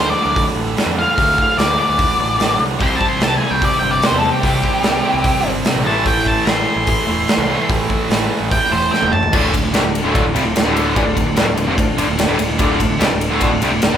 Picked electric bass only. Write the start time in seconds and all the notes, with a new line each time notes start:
Already playing: D2
0.25 D2
0.56 A1
0.86 F2
1.18 D2
1.59 D2
1.89 D2
2.19 A1
2.39 A1
2.59 C2
2.81 C2
3.20 C2
3.51 C2
3.82 G1
4.12 E2
4.43 C2
4.83 C2
5.14 C2
5.44 G1
5.75 A#1
5.85 A1
6.46 A1
6.76 A1
7.07 E1
7.38 C2
7.69 A1
8.10 A1
8.40 A1
8.71 E1
9.02 E1
9.33 D1
9.54 D1
9.63 D1
9.73 C2
9.84 D1
10.04 D1
10.24 D1
10.35 C2
10.45 D1
10.55 D1
10.66 D1
10.96 A1
11.06 D1
11.17 D1
11.26 D1
11.36 D1
11.46 D1
11.57 D1
11.67 F1
11.78 D1
11.97 G1
12.08 D1
12.19 D1
12.29 D1
12.39 D1
12.49 D1
12.59 D1
12.80 D1
12.90 D1
13.00 C2
13.10 D1
13.31 D1
13.51 D1
13.62 C2
13.72 D1
13.82 D1
13.92 D1